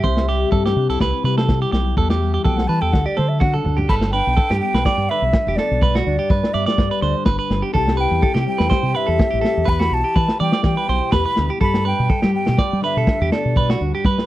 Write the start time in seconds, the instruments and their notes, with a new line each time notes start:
Already playing: steel-string acoustic guitar G3, flute E5
0.03 fingered electric bass C2, steel-string acoustic guitar C3 G4, clean electric guitar C5, kick
0.17 snare
0.29 steel-string acoustic guitar G3, clean electric guitar G4
0.52 fingered electric bass G2, steel-string acoustic guitar C4, clean electric guitar A4, kick
0.66 clean electric guitar G4, snare
0.76 fingered electric bass C3, steel-string acoustic guitar D4
0.89 fingered electric bass C2, steel-string acoustic guitar E4, clean electric guitar A4
1.00 fingered electric bass C2, steel-string acoustic guitar C4, clean electric guitar B4, kick, snare
1.24 fingered electric bass C3, steel-string acoustic guitar G3, clean electric guitar B4
1.38 clean electric guitar A4, snare
1.48 steel-string acoustic guitar C4, kick, snare
1.62 clean electric guitar G4
1.72 fingered electric bass B1, steel-string acoustic guitar E4, clean electric guitar G4, snare
1.97 fingered electric bass E2, steel-string acoustic guitar E3 G3 B3 E4 G4, clean electric guitar A4, kick
2.10 clean electric guitar G4, snare
2.21 steel-string acoustic guitar G3
2.34 clean electric guitar G4
2.44 fingered electric bass B1, steel-string acoustic guitar B3, clean electric guitar A4, flute G5, kick
2.57 flute F#5, snare
2.67 fingered electric bass E3, steel-string acoustic guitar E4, clean electric guitar B4, flute A5
2.81 fingered electric bass E2, clean electric guitar A4, flute G5
2.92 fingered electric bass D2, steel-string acoustic guitar D3 A4, flute F#5, kick, snare
3.06 clean electric guitar G4, flute D5
3.17 fingered electric bass D3, steel-string acoustic guitar F#3, clean electric guitar A4, flute C5, high tom
3.29 flute E5
3.40 steel-string acoustic guitar D4, clean electric guitar F#4, flute F#5, kick, mid tom
3.54 clean electric guitar A4, mid tom
3.64 fingered electric bass D2, steel-string acoustic guitar F#4, floor tom
3.77 clean electric guitar G4, floor tom
3.89 fingered electric bass G1, clean electric guitar A4, steel-string acoustic guitar B4, flute B5, muted steel-string acoustic guitar stroke, kick, crash
4.01 snare
4.11 steel-string acoustic guitar D4, clean electric guitar B4, flute G5
4.27 fingered electric bass B1
4.37 clean electric guitar A4, steel-string acoustic guitar B4, kick, snare
4.50 fingered electric bass G2, clean electric guitar G4, snare
4.60 steel-string acoustic guitar G3 B3, flute G5
4.74 fingered electric bass B1, clean electric guitar B4, snare
4.85 steel-string acoustic guitar B4, clean electric guitar D5, kick, snare
4.98 fingered electric bass G2
5.09 steel-string acoustic guitar D3, clean electric guitar B4, flute E5
5.22 fingered electric bass B1
5.33 steel-string acoustic guitar B4, kick, snare
5.46 fingered electric bass E1, clean electric guitar G4, snare
5.56 steel-string acoustic guitar B3, clean electric guitar A4, flute D5, snare
5.71 fingered electric bass B1
5.82 steel-string acoustic guitar G2 B4, clean electric guitar B4, kick
5.95 clean electric guitar F#4, snare
6.05 fingered electric bass D2, steel-string acoustic guitar D4, flute D5
6.19 clean electric guitar G4
6.30 fingered electric bass G2, steel-string acoustic guitar B4, clean electric guitar B4, kick, snare
6.43 snare
6.54 fingered electric bass G2, steel-string acoustic guitar G3 B3, clean electric guitar D5, flute E5
6.66 clean electric guitar D5, flute D5, snare
6.78 fingered electric bass G2, steel-string acoustic guitar B4, kick, snare
6.91 clean electric guitar B4
7.02 fingered electric bass D2, steel-string acoustic guitar D3 D4, clean electric guitar C5, snare
7.25 fingered electric bass G1, steel-string acoustic guitar B4, clean electric guitar B4, kick, snare
7.39 clean electric guitar B4
7.50 fingered electric bass G1, steel-string acoustic guitar B3, snare
7.62 clean electric guitar G4
7.73 fingered electric bass C2, steel-string acoustic guitar C3 G3 C4 E4 G4, clean electric guitar A4, flute A5, kick
7.88 snare
7.97 steel-string acoustic guitar E4, clean electric guitar B4, flute G5
8.11 fingered electric bass E2
8.22 steel-string acoustic guitar G4, clean electric guitar A4, kick
8.35 fingered electric bass C3, clean electric guitar G4, snare
8.46 steel-string acoustic guitar G3 C4, flute G5
8.58 fingered electric bass E2, clean electric guitar B4, snare
8.70 steel-string acoustic guitar G4, clean electric guitar C5, kick, snare
8.83 fingered electric bass C3
8.93 steel-string acoustic guitar G2 E4, clean electric guitar B4, flute E5
9.07 fingered electric bass E2, clean electric guitar A4
9.18 steel-string acoustic guitar G4, kick, snare
9.31 fingered electric bass A1, clean electric guitar G4
9.41 steel-string acoustic guitar C4, clean electric guitar A4, snare
9.57 fingered electric bass E2
9.65 fingered electric bass E2, clean electric guitar B4, flute B5, muted steel-string acoustic guitar stroke, kick
9.79 clean electric guitar F#4, snare
9.90 fingered electric bass B1, steel-string acoustic guitar E4, flute A5
10.04 clean electric guitar G4
10.14 fingered electric bass E3, steel-string acoustic guitar G4, clean electric guitar B4, kick, snare
10.28 snare
10.39 fingered electric bass E3, steel-string acoustic guitar G3 B3, clean electric guitar D5, flute G5
10.52 clean electric guitar D5, snare
10.63 fingered electric bass E3, steel-string acoustic guitar G4, flute G5, kick, snare
10.77 clean electric guitar B4
10.87 fingered electric bass B1, steel-string acoustic guitar B2 E4, clean electric guitar C5, snare
11.12 fingered electric bass E2, steel-string acoustic guitar G4, clean electric guitar B4, flute B5, kick, snare
11.25 clean electric guitar B4, snare
11.36 fingered electric bass D2, steel-string acoustic guitar B3, snare
11.50 clean electric guitar G4
11.61 steel-string acoustic guitar G2 B4, fingered electric bass G2, clean electric guitar A4, flute B5, kick
11.74 snare
11.85 steel-string acoustic guitar D4, clean electric guitar B4, flute G5
12.00 fingered electric bass B2
12.10 clean electric guitar A4, steel-string acoustic guitar B4, kick
12.22 fingered electric bass G3, clean electric guitar G4, snare
12.34 steel-string acoustic guitar G3 B3, flute G5
12.46 fingered electric bass B2, clean electric guitar G4, snare
12.58 steel-string acoustic guitar B4, clean electric guitar D5, kick, snare
12.73 fingered electric bass G3
12.81 steel-string acoustic guitar D3 D4, clean electric guitar B4, flute E5
12.97 fingered electric bass B2, clean electric guitar A4
13.07 steel-string acoustic guitar B4, kick, snare
13.21 fingered electric bass E2, clean electric guitar G4
13.32 steel-string acoustic guitar B3, clean electric guitar A4, flute D5, snare
13.45 fingered electric bass B2
13.55 steel-string acoustic guitar G2 B4, clean electric guitar B4, kick
13.69 clean electric guitar F#4, snare
13.81 fingered electric bass D2, steel-string acoustic guitar D4
13.95 clean electric guitar G4
14.05 fingered electric bass G3, clean electric guitar B4, steel-string acoustic guitar B4, kick, snare
14.18 snare